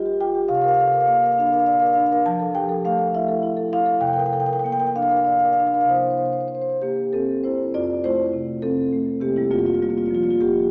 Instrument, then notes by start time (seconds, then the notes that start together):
marimba
Already playing: D#3 F4 D#5
0.06 G4
0.20 F4 G5
0.35 G4
0.48 C3 F5
0.55 F5
0.62 A#4 F5
0.68 F5
0.74 F5
0.79 A4 F5
0.88 F5
0.93 A#4 F5
1.01 F5
1.07 A#3 F5
1.14 F5
1.20 A#4 F5
1.26 F5
1.32 F5
1.38 D4 F5
1.47 F5
1.52 A#4 F5
1.60 F5
1.66 D5 F5
1.73 F5
1.80 A#4 F5
1.86 F5
1.93 D4 F5
1.99 F5
2.06 F5
2.12 A#4 F5
2.26 F3 A5
2.39 A4
2.54 G4 G5
2.69 A4
2.85 A3 F5
2.99 A4
3.15 E4 E5
3.28 A4
3.43 E4
3.57 A4
3.73 E4 F5
3.86 A4
4.00 C3 G5
4.07 G5
4.13 A#4 G5
4.19 G5
4.26 G5
4.33 A4 G5
4.40 G5
4.46 A#4 G5
4.53 G5
4.59 G5
4.64 A#3 G5
4.72 G5
4.80 A#4 G5
4.87 G5
4.96 D4 F5
5.03 F5
5.09 A#4 F5
5.17 F5
5.25 D5 F5
5.32 F5
5.39 F5
5.44 A#4 F5
5.53 F5
5.59 D4 F5
5.67 F5
5.74 A#4 F5
5.81 C3 F5
5.86 A#3 E4 C5
5.96 C5
6.04 C5
6.11 C5
6.18 C5
6.26 C5
6.33 C5
6.41 C5
6.48 C5
6.55 C5
6.62 C5
6.70 C5
6.82 A#3 G4
7.13 C4 A4
7.43 E4 C5
7.74 F2 F4 D5
8.04 A3 E4 C5
8.33 C3
8.62 C4 A4
8.93 A3
9.20 C3 A#3 G4
9.36 G3 E4
9.50 F2 A#3 F4
9.59 A#3 F4
9.66 A#3 F4
9.74 A#3 F4
9.82 G3 A#3 F4
9.90 A#3 F4
9.98 A#3 F4
10.06 A#3 F4
10.11 F3 F4
10.16 A#3
10.23 A#3 F4
10.31 A#3 F4
10.41 A#3 G4